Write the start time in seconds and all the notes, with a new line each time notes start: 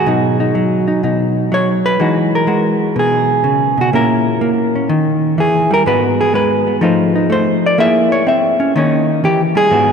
Already playing: F#4
0.06 B2 F#3 D#4
0.40 D#4
0.55 F#3
0.88 D#4
1.03 B2 D#4
1.52 F#3 C#5
1.86 B4
2.00 E3 G#3 D#4 F#4
2.35 A#4
2.47 G#3 F#4
2.96 B2 G#4
3.44 C#3
3.78 B2 F#4
3.93 A#2 A#3 C#4 E4 A#4
4.41 A#3
4.75 C#4
4.89 D#3
5.38 E3 G#4
5.71 G3 A#4
5.86 G#2 G#3 B3 F#4 B4
6.21 G#4
6.34 G#3 B4
6.67 B3
6.81 F3 A3 D#4 F4 C5
7.15 D#4
7.30 A3 C5
7.66 D5
7.78 A#3 E4 G#4 E5
8.12 C#5
8.27 C4 E5
8.60 C#4
8.76 D#3 A#3 C#4 D#4 C#5
9.24 E3 G4
9.55 G3 G#4
9.71 G#2 G#3 B3 F#4